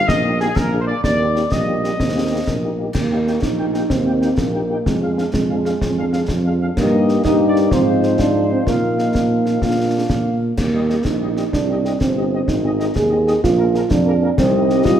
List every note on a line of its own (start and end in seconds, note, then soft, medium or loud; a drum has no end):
0.08 0.49 A#1 medium
0.08 0.40 D#5 medium
0.08 concert bass drum medium
0.08 snare medium
0.23 0.30 A#3 medium
0.23 0.29 D#4 medium
0.23 0.30 G4 medium
0.40 0.46 A#3 medium
0.40 0.46 D#4 medium
0.40 0.46 G4 medium
0.40 0.55 G#4 medium
0.40 snare soft
0.56 0.92 A#1 medium
0.56 0.80 A#4 medium
0.56 concert bass drum medium
0.56 snare medium
0.72 0.78 A#3 soft
0.72 0.78 D4 soft
0.72 0.78 G#4 soft
0.80 0.84 C5 medium
0.87 0.94 A#3 soft
0.87 0.94 D4 soft
0.87 0.94 G#4 soft
0.87 1.03 D5 medium
1.04 1.44 D#2 medium
1.04 1.48 D5 medium
1.04 concert bass drum medium
1.04 snare medium
1.19 1.25 A#3 soft
1.19 1.26 D#4 soft
1.19 1.26 G4 soft
1.35 1.41 A#3 soft
1.35 1.41 D#4 soft
1.35 1.41 G4 soft
1.35 snare soft
1.51 1.92 A#1 medium
1.51 1.99 G3 medium
1.51 2.79 D#5 medium
1.51 concert bass drum medium
1.51 snare medium
1.67 1.73 A#3 soft
1.67 1.73 D#4 soft
1.67 1.73 G4 soft
1.83 1.89 A#3 soft
1.83 1.89 D#4 soft
1.83 1.89 G4 soft
1.83 snare soft
1.98 2.40 D#2 medium
1.98 2.49 C4 medium
1.98 concert bass drum medium
1.98 snare medium
2.15 2.21 A#3 soft
2.15 2.21 D#4 soft
2.15 2.21 G4 soft
2.32 2.37 A#3 soft
2.32 2.38 D#4 soft
2.32 2.38 G4 soft
2.47 2.87 A#1 medium
2.47 2.94 A#3 soft
2.47 concert bass drum medium
2.47 snare medium
2.64 2.70 A#3 soft
2.64 2.70 D#4 soft
2.64 2.70 G4 soft
2.79 2.85 A#3 soft
2.79 2.85 D#4 soft
2.79 2.86 G4 soft
2.94 3.35 D#2 medium
2.94 3.43 A#3 medium
2.94 concert bass drum medium
2.94 snare medium
2.94 crash soft
3.11 3.17 A#3 soft
3.11 3.17 D#4 soft
3.11 3.17 G4 soft
3.11 3.17 G5 soft
3.27 3.33 A#3 soft
3.27 3.33 D#4 soft
3.27 3.33 G4 soft
3.27 3.32 G5 soft
3.27 snare soft
3.41 3.83 A#1 medium
3.41 3.92 D#4 medium
3.41 concert bass drum medium
3.41 snare medium
3.58 3.65 A#3 soft
3.58 3.65 D#4 soft
3.58 3.65 G4 soft
3.58 3.64 G5 soft
3.74 3.81 A#3 soft
3.74 3.81 D#4 soft
3.74 3.81 G4 soft
3.74 3.80 G5 soft
3.74 snare soft
3.90 4.31 D#2 medium
3.90 4.40 C4 medium
3.90 concert bass drum medium
3.90 snare medium
4.06 4.13 A#3 soft
4.06 4.12 D#4 soft
4.06 4.13 G4 soft
4.06 4.12 G5 soft
4.21 4.28 A#3 soft
4.21 4.28 D#4 soft
4.21 4.28 G4 soft
4.21 4.27 G5 soft
4.21 snare soft
4.38 4.79 A#1 medium
4.38 4.88 A#3 medium
4.38 concert bass drum medium
4.38 snare medium
4.53 4.60 A#3 soft
4.53 4.60 D#4 soft
4.53 4.60 G4 soft
4.53 4.59 G5 soft
4.70 4.76 A#3 soft
4.70 4.76 D#4 soft
4.70 4.76 G4 soft
4.70 4.77 G5 soft
4.86 5.26 F2 medium
4.86 5.32 G#3 medium
4.86 concert bass drum medium
4.86 snare medium
5.01 5.07 F3 soft
5.01 5.07 D4 soft
5.01 5.07 G#4 soft
5.01 5.08 F5 soft
5.17 5.23 F3 soft
5.17 5.23 D4 soft
5.17 5.23 G#4 soft
5.17 5.23 F5 soft
5.17 snare soft
5.33 5.73 F2 medium
5.33 6.56 G#3 medium
5.33 concert bass drum medium
5.33 snare medium
5.49 5.56 F3 soft
5.49 5.56 D4 soft
5.49 5.55 G#4 soft
5.49 5.55 F5 soft
5.65 5.72 F3 soft
5.65 5.72 D4 soft
5.65 5.71 G#4 soft
5.65 5.71 F5 soft
5.65 snare soft
5.82 6.22 F2 medium
5.82 concert bass drum medium
5.82 snare medium
5.97 6.03 F3 medium
5.97 6.03 D4 medium
5.97 6.03 G#4 soft
5.97 6.03 F5 soft
6.12 6.19 F3 medium
6.12 6.19 D4 medium
6.12 6.19 G#4 medium
6.12 6.18 F5 medium
6.12 snare soft
6.28 6.69 F2 medium
6.28 concert bass drum medium
6.28 snare medium
6.46 6.51 F3 medium
6.46 6.52 D4 medium
6.46 6.52 G#4 medium
6.46 6.51 F5 soft
6.61 6.67 F3 soft
6.61 6.67 D4 medium
6.61 6.67 G#4 soft
6.61 6.67 F5 medium
6.77 7.19 G2 medium
6.77 7.21 A#3 medium
6.77 7.21 D#4 medium
6.77 7.21 G4 medium
6.77 7.22 D#5 medium
6.77 concert bass drum medium
6.77 snare medium
6.77 crash soft
7.09 snare soft
7.24 7.67 G2 medium
7.24 7.69 A#3 medium
7.24 7.69 D#4 medium
7.24 7.69 G4 medium
7.24 7.35 D#5 medium
7.24 concert bass drum medium
7.24 snare medium
7.47 7.70 D5 medium
7.56 snare soft
7.71 8.14 G#2 medium
7.71 8.63 F3 medium
7.71 8.21 C4 medium
7.71 8.64 D#4 medium
7.71 8.63 F4 medium
7.71 8.67 C5 medium
7.71 concert bass drum medium
7.71 snare medium
8.03 snare soft
8.19 8.55 G#2 medium
8.19 8.51 D4 medium
8.19 concert bass drum medium
8.19 snare medium
8.52 8.65 C4 medium
8.66 9.10 A#2 medium
8.66 9.58 F3 soft
8.66 10.05 A#3 medium
8.66 9.58 D#4 soft
8.66 9.58 F4 soft
8.66 9.62 F5 soft
8.66 concert bass drum medium
8.66 snare medium
8.99 snare soft
9.15 9.57 A#2 medium
9.15 concert bass drum medium
9.15 snare medium
9.46 snare soft
9.62 10.04 A#2 medium
9.62 10.42 A#3 soft
9.62 10.38 D4 soft
9.62 10.38 F4 soft
9.62 10.38 F5 soft
9.62 concert bass drum medium
9.62 snare medium
10.10 10.52 A#2 medium
10.10 concert bass drum medium
10.10 snare medium
10.57 10.98 D#2 medium
10.57 11.06 A#3 medium
10.57 concert bass drum medium
10.57 snare medium
10.57 crash soft
10.74 10.80 G3 soft
10.74 10.80 D#4 soft
10.74 10.80 G4 soft
10.74 10.81 D#5 soft
10.89 10.95 G3 soft
10.89 10.95 D#4 soft
10.89 10.95 G4 soft
10.89 10.95 D#5 soft
10.89 snare soft
11.05 11.45 A#1 medium
11.05 11.52 D#4 medium
11.05 concert bass drum medium
11.05 snare medium
11.21 11.27 G3 soft
11.21 11.27 D#4 soft
11.21 11.27 G4 soft
11.21 11.27 D#5 soft
11.37 11.43 G3 soft
11.37 11.43 D#4 soft
11.37 11.43 G4 soft
11.37 11.43 D#5 soft
11.37 snare soft
11.52 11.93 C2 medium
11.52 11.97 D4 medium
11.52 concert bass drum medium
11.52 snare medium
11.69 11.75 C4 soft
11.69 11.75 D#4 soft
11.69 11.75 G4 soft
11.69 11.76 D#5 soft
11.85 11.91 C4 soft
11.85 11.91 D#4 soft
11.85 11.91 G4 soft
11.85 11.91 D#5 soft
11.85 snare soft
12.01 12.40 G1 medium
12.01 12.50 C4 medium
12.01 concert bass drum medium
12.01 snare medium
12.17 12.23 C4 soft
12.17 12.22 D#4 soft
12.17 12.22 G4 soft
12.17 12.23 D#5 soft
12.33 12.39 C4 soft
12.33 12.39 D#4 soft
12.33 12.39 G4 soft
12.33 12.39 D#5 soft
12.48 12.88 G#1 medium
12.48 12.95 D#4 medium
12.48 concert bass drum medium
12.48 snare medium
12.64 12.70 C4 soft
12.64 12.70 D#4 soft
12.64 12.70 G#4 soft
12.64 12.71 D#5 soft
12.79 12.86 C4 soft
12.79 12.86 D#4 soft
12.79 12.86 G#4 soft
12.79 12.85 D#5 soft
12.79 snare soft
12.96 13.36 D#2 medium
12.96 13.40 G#4 medium
12.96 concert bass drum medium
12.96 snare medium
13.10 13.17 C4 soft
13.10 13.17 D#4 soft
13.10 13.17 G#4 soft
13.10 13.16 D#5 soft
13.27 13.33 C4 soft
13.27 13.33 D#4 soft
13.27 13.33 G#4 soft
13.27 13.33 D#5 soft
13.27 snare soft
13.43 13.83 A#1 medium
13.43 13.93 F4 medium
13.43 concert bass drum medium
13.43 snare medium
13.58 13.65 A#3 medium
13.58 13.65 D4 medium
13.58 13.65 G#4 soft
13.58 13.64 A#4 medium
13.74 13.81 A#3 medium
13.74 13.80 D4 medium
13.74 13.80 G#4 medium
13.74 13.81 A#4 medium
13.74 snare soft
13.91 14.31 F2 medium
13.91 14.38 D4 medium
13.91 concert bass drum medium
13.91 snare medium
14.06 14.12 A#3 medium
14.06 14.12 D4 medium
14.06 14.12 G#4 medium
14.06 14.13 A#4 medium
14.22 14.28 A#3 medium
14.22 14.28 D4 soft
14.22 14.28 G#4 medium
14.22 14.29 A#4 medium
14.37 14.81 C2 medium
14.37 14.98 G3 medium
14.37 14.86 C4 medium
14.37 15.00 D#4 medium
14.37 15.00 G4 medium
14.37 15.00 D#5 medium
14.37 concert bass drum medium
14.37 snare medium
14.37 crash soft
14.70 snare soft
14.85 15.00 C2 medium
14.85 15.00 F4 medium
14.85 concert bass drum medium
14.85 snare medium